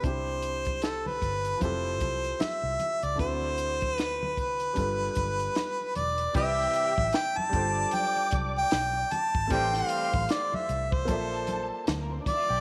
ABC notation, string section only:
X:1
M:4/4
L:1/16
Q:"Swing 16ths" 1/4=76
K:C
V:1 name="String section"
z16 | z16 | [Gg]4 z2 [dd']8 z2 | [cc']6 z2 [Aa]4 z/2 [_B,_B]/2 [Cc]/2 [Dd]/2 [Ee]/2 [Ff]/2 [Gg]/2 z/2 |]